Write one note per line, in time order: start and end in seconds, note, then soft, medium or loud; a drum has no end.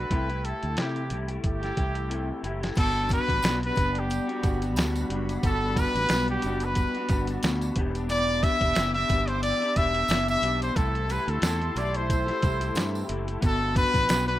0.00 0.10 A3 soft
0.00 0.11 D4 soft
0.00 0.11 F#4 medium
0.00 0.46 B4 medium
0.10 0.52 C2 loud
0.10 0.29 C3 medium
0.10 0.29 E3 medium
0.10 0.29 A3 medium
0.10 0.29 E4 medium
0.10 0.28 G4 medium
0.10 kick loud
0.10 closed hi-hat medium
0.29 0.77 A3 soft
0.29 0.78 E4 soft
0.29 0.77 G4 medium
0.29 closed hi-hat soft
0.45 0.81 A4 medium
0.45 closed hi-hat medium
0.63 0.75 D2 medium
0.63 closed hi-hat soft
0.77 1.10 C3 medium
0.77 1.12 C3 medium
0.77 1.09 E3 medium
0.77 1.10 A3 medium
0.77 1.11 E4 medium
0.77 1.18 G4 medium
0.77 1.12 G4 medium
0.77 snare loud
0.77 closed hi-hat medium
0.96 closed hi-hat soft
1.10 1.37 C2 medium
1.10 1.28 E3 medium
1.10 1.29 A3 medium
1.10 1.29 E4 medium
1.10 1.27 G4 medium
1.10 closed hi-hat medium
1.28 1.63 A3 soft
1.28 1.62 E4 medium
1.28 1.60 G4 medium
1.28 closed hi-hat soft
1.44 1.71 G1 medium
1.44 2.41 G4 medium
1.44 kick medium
1.44 closed hi-hat medium
1.62 1.76 A3 soft
1.62 1.77 E4 soft
1.62 1.77 G4 soft
1.62 snare soft
1.62 closed hi-hat soft
1.76 2.31 C2 medium
1.76 2.07 E3 medium
1.76 2.09 A3 medium
1.76 2.09 E4 medium
1.76 2.09 G4 medium
1.76 kick medium
1.76 closed hi-hat medium
1.95 closed hi-hat soft
2.08 2.43 C3 medium
2.08 2.40 E3 medium
2.08 2.42 A3 medium
2.08 2.42 E4 medium
2.08 2.44 G4 medium
2.08 closed hi-hat medium
2.41 2.70 F#1 medium
2.41 2.61 E3 medium
2.41 2.61 A3 medium
2.41 2.60 E4 medium
2.41 2.59 G4 medium
2.41 closed hi-hat medium
2.60 2.77 A3 soft
2.60 2.77 E4 soft
2.60 2.76 G4 medium
2.60 snare medium
2.60 closed hi-hat soft
2.75 3.18 G1 medium
2.75 10.72 G3 medium
2.75 3.08 G3 medium
2.75 3.08 B3 medium
2.75 3.10 D4 medium
2.75 3.11 F#4 medium
2.75 3.09 A4 loud
2.75 7.72 F#5 medium
2.75 7.72 B5 medium
2.75 kick loud
2.75 closed hi-hat medium
2.75 crash medium
2.75 tambourine soft
3.09 3.28 G3 medium
3.09 3.28 B3 medium
3.09 3.27 D4 medium
3.09 3.26 F#4 medium
3.09 kick medium
3.09 closed hi-hat medium
3.09 tambourine medium
3.13 3.60 B4 loud
3.27 3.41 A1 medium
3.27 3.42 B3 soft
3.27 3.43 D4 soft
3.27 3.43 F#4 medium
3.27 kick medium
3.27 closed hi-hat soft
3.42 3.70 B1 medium
3.42 3.61 G3 medium
3.42 3.62 B3 medium
3.42 3.61 D4 medium
3.42 3.59 F#4 medium
3.42 snare loud
3.42 closed hi-hat loud
3.42 tambourine medium
3.61 3.75 B3 soft
3.61 3.76 D4 soft
3.61 3.76 F#4 medium
3.61 closed hi-hat soft
3.66 4.01 B4 loud
3.75 4.19 F#1 medium
3.75 4.27 G3 medium
3.75 4.28 B3 medium
3.75 4.28 D4 medium
3.75 kick medium
3.75 closed hi-hat medium
3.75 tambourine soft
3.95 4.64 G4 medium
3.95 closed hi-hat soft
4.10 closed hi-hat medium
4.10 tambourine soft
4.27 4.43 B3 soft
4.27 4.43 D4 medium
4.27 4.43 F#4 medium
4.27 closed hi-hat soft
4.43 4.77 G1 medium
4.43 4.61 G3 medium
4.43 4.62 B3 medium
4.43 4.62 D4 medium
4.43 4.60 F#4 medium
4.43 kick loud
4.43 closed hi-hat medium
4.43 tambourine soft
4.62 4.76 B3 soft
4.62 4.77 D4 soft
4.62 4.77 F#4 soft
4.62 closed hi-hat medium
4.62 tambourine soft
4.76 5.04 D2 medium
4.76 5.08 G3 medium
4.76 5.09 B3 medium
4.76 5.10 D4 medium
4.76 5.11 F#4 loud
4.76 snare loud
4.76 closed hi-hat medium
4.76 tambourine medium
4.96 closed hi-hat soft
4.96 tambourine medium
5.09 5.37 F#1 medium
5.09 5.42 G3 medium
5.09 5.42 B3 medium
5.09 5.43 D4 medium
5.09 5.44 F#4 medium
5.09 closed hi-hat medium
5.29 closed hi-hat medium
5.29 tambourine soft
5.43 5.85 G1 loud
5.43 5.75 G3 medium
5.43 5.77 B3 medium
5.43 5.77 D4 medium
5.43 5.78 F#4 medium
5.43 5.81 A4 loud
5.43 kick loud
5.43 closed hi-hat medium
5.43 tambourine medium
5.76 5.95 G3 medium
5.76 5.96 B3 medium
5.76 5.95 D4 medium
5.76 5.94 F#4 medium
5.76 6.30 B4 loud
5.76 kick loud
5.76 closed hi-hat medium
5.76 tambourine soft
5.95 6.07 A1 loud
5.95 6.10 B3 soft
5.95 6.11 D4 soft
5.95 6.10 F#4 medium
5.95 closed hi-hat medium
5.95 tambourine soft
6.09 6.37 B1 medium
6.09 6.29 G3 medium
6.09 6.29 B3 medium
6.09 6.29 D4 medium
6.09 6.28 F#4 medium
6.09 snare loud
6.09 closed hi-hat loud
6.09 tambourine medium
6.28 6.45 D4 soft
6.28 6.44 F#4 medium
6.28 6.66 G4 medium
6.28 closed hi-hat soft
6.32 6.44 B3 soft
6.42 6.85 F#1 medium
6.42 6.96 G3 medium
6.42 6.96 B3 medium
6.42 closed hi-hat medium
6.42 tambourine soft
6.46 6.95 D4 medium
6.46 6.94 F#4 medium
6.60 closed hi-hat medium
6.60 tambourine soft
6.65 7.30 B4 loud
6.75 kick medium
6.75 closed hi-hat medium
6.75 tambourine soft
6.95 7.09 B3 soft
6.95 7.10 D4 medium
6.95 7.10 F#4 medium
6.95 closed hi-hat soft
7.08 7.36 G1 medium
7.08 7.28 G3 medium
7.08 7.28 B3 medium
7.08 7.29 D4 medium
7.08 7.27 F#4 medium
7.08 kick loud
7.08 closed hi-hat medium
7.08 tambourine soft
7.27 7.44 D4 medium
7.27 7.43 F#4 medium
7.27 closed hi-hat medium
7.27 tambourine soft
7.31 7.43 B3 soft
7.43 7.70 D2 loud
7.43 7.75 G3 medium
7.43 7.76 B3 medium
7.43 7.77 D4 medium
7.43 7.78 F#4 medium
7.43 snare loud
7.43 closed hi-hat medium
7.43 tambourine medium
7.61 closed hi-hat soft
7.61 tambourine medium
7.76 8.44 E1 medium
7.76 7.95 E3 medium
7.76 7.95 B3 medium
7.76 7.95 D4 medium
7.76 7.93 G4 medium
7.76 10.74 E5 medium
7.76 10.73 D6 medium
7.76 kick loud
7.76 closed hi-hat medium
7.94 8.08 B3 soft
7.94 8.08 D4 soft
7.94 8.09 G4 medium
7.94 closed hi-hat soft
7.94 tambourine soft
8.08 8.40 E3 medium
8.08 8.41 B3 medium
8.08 8.43 D4 medium
8.08 8.43 G4 medium
8.08 8.45 D5 loud
8.08 closed hi-hat medium
8.08 tambourine medium
8.41 8.61 E3 medium
8.41 8.61 B3 medium
8.41 8.60 D4 medium
8.41 8.58 G4 medium
8.41 8.94 E5 loud
8.41 kick loud
8.41 closed hi-hat medium
8.41 tambourine soft
8.59 8.73 E1 medium
8.59 8.75 B3 soft
8.59 8.76 D4 medium
8.59 8.75 G4 medium
8.59 kick medium
8.59 closed hi-hat soft
8.75 9.03 F#1 medium
8.75 8.94 E3 medium
8.75 8.95 B3 medium
8.75 8.94 D4 medium
8.75 8.92 G4 medium
8.75 snare loud
8.75 closed hi-hat loud
8.75 tambourine medium
8.94 9.10 B3 soft
8.94 9.10 D4 soft
8.94 9.09 G4 medium
8.94 9.30 E5 loud
8.94 closed hi-hat soft
9.09 9.51 G1 medium
9.09 9.61 E3 medium
9.09 9.62 B3 medium
9.09 9.61 D4 medium
9.09 9.59 G4 medium
9.09 kick medium
9.09 closed hi-hat medium
9.09 tambourine soft
9.28 9.42 C5 medium
9.28 closed hi-hat medium
9.43 9.78 D5 loud
9.43 closed hi-hat loud
9.43 tambourine soft
9.61 9.75 B3 soft
9.61 9.76 D4 medium
9.61 9.76 G4 medium
9.61 closed hi-hat soft
9.75 10.03 E1 loud
9.75 9.94 E3 medium
9.75 9.95 B3 medium
9.75 9.94 D4 medium
9.75 9.92 G4 medium
9.75 10.28 E5 loud
9.75 kick medium
9.75 closed hi-hat medium
9.75 tambourine soft
9.94 10.08 B3 soft
9.94 10.09 D4 medium
9.94 10.09 G4 soft
9.94 closed hi-hat medium
10.08 10.36 F#1 loud
10.08 10.41 E3 medium
10.08 10.42 B3 medium
10.08 10.42 D4 medium
10.08 10.43 G4 medium
10.08 snare loud
10.08 closed hi-hat medium
10.08 tambourine medium
10.28 10.60 E5 loud
10.28 closed hi-hat soft
10.28 tambourine soft
10.42 10.69 B1 medium
10.42 10.75 E3 medium
10.42 10.76 B3 medium
10.42 10.76 D4 medium
10.42 10.76 G4 medium
10.42 closed hi-hat medium
10.62 10.78 C5 medium
10.62 closed hi-hat soft
10.62 tambourine soft
10.75 11.18 C2 loud
10.75 11.09 C3 medium
10.75 11.06 E3 medium
10.75 11.08 A3 medium
10.75 11.09 E4 medium
10.75 11.09 G4 medium
10.75 13.40 A4 medium
10.75 11.13 A4 medium
10.75 13.40 E5 medium
10.75 13.40 C6 medium
10.75 kick loud
10.75 closed hi-hat medium
10.75 tambourine medium
10.95 closed hi-hat soft
11.08 11.27 E3 medium
11.08 11.28 A3 medium
11.08 11.28 E4 medium
11.08 11.26 G4 medium
11.08 closed hi-hat medium
11.08 tambourine medium
11.12 11.31 B4 medium
11.27 11.40 D2 medium
11.27 11.42 A3 soft
11.27 11.43 E4 medium
11.27 11.43 G4 medium
11.27 11.80 A4 medium
11.27 closed hi-hat medium
11.42 11.69 E2 medium
11.42 11.61 C3 medium
11.42 11.61 E3 medium
11.42 11.62 A3 medium
11.42 11.61 E4 medium
11.42 11.59 G4 medium
11.42 snare loud
11.42 closed hi-hat loud
11.42 tambourine medium
11.60 11.75 A3 soft
11.60 11.76 E4 soft
11.60 11.76 G4 medium
11.60 closed hi-hat soft
11.75 12.29 B1 medium
11.75 12.27 E3 medium
11.75 12.28 A3 medium
11.75 12.27 E4 medium
11.75 12.25 G4 medium
11.75 11.98 D5 medium
11.75 closed hi-hat medium
11.75 tambourine soft
11.94 13.11 C5 medium
11.94 closed hi-hat soft
12.10 kick medium
12.10 closed hi-hat medium
12.10 tambourine soft
12.26 12.41 A3 soft
12.26 12.42 E4 medium
12.26 12.42 G4 medium
12.26 snare soft
12.26 closed hi-hat soft
12.41 12.70 C2 medium
12.41 12.60 E3 medium
12.41 12.61 A3 medium
12.41 12.60 E4 medium
12.41 12.58 G4 medium
12.41 kick loud
12.41 closed hi-hat medium
12.41 tambourine soft
12.60 12.75 A3 soft
12.60 12.75 E4 soft
12.60 12.75 G4 medium
12.60 closed hi-hat medium
12.60 tambourine soft
12.75 13.02 G2 medium
12.75 13.09 C3 medium
12.75 13.07 E3 medium
12.75 13.08 A3 medium
12.75 13.09 E4 medium
12.75 13.09 G4 loud
12.75 snare loud
12.75 closed hi-hat medium
12.75 tambourine medium
12.95 tambourine soft
13.08 13.36 F#1 medium
13.08 13.27 E3 medium
13.08 13.28 A3 medium
13.08 13.27 E4 medium
13.08 13.25 G4 medium
13.08 closed hi-hat medium
13.27 13.41 A3 soft
13.27 13.42 E4 soft
13.27 13.42 G4 soft
13.27 closed hi-hat soft
13.40 13.84 G1 medium
13.40 13.72 G3 medium
13.40 14.39 G3 medium
13.40 13.73 B3 medium
13.40 13.74 D4 medium
13.40 13.75 F#4 medium
13.40 14.39 F#5 medium
13.40 14.39 B5 medium
13.40 kick loud
13.40 closed hi-hat medium
13.40 tambourine soft
13.46 13.76 A4 loud
13.73 13.93 G3 medium
13.73 13.94 B3 medium
13.73 13.92 D4 medium
13.73 13.91 F#4 medium
13.73 kick loud
13.73 closed hi-hat medium
13.73 tambourine soft
13.78 14.25 B4 loud
13.92 14.06 A1 medium
13.92 14.07 B3 soft
13.92 14.07 D4 medium
13.92 14.07 F#4 soft
13.92 kick medium
13.92 closed hi-hat medium
13.92 tambourine soft
14.07 14.36 B1 medium
14.07 14.27 G3 medium
14.07 14.27 B3 medium
14.07 14.26 D4 medium
14.07 14.24 F#4 medium
14.07 snare loud
14.07 closed hi-hat loud
14.07 tambourine medium
14.26 14.39 B3 soft
14.26 14.39 D4 soft
14.26 14.39 F#4 medium
14.26 14.39 B4 medium
14.26 closed hi-hat soft